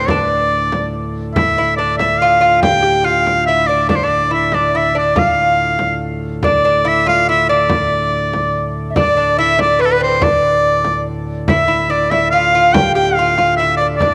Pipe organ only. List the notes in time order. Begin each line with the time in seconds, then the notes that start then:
Already playing: D2 A2
3.90 D2 A2
8.96 D2 A2
14.01 D2 A2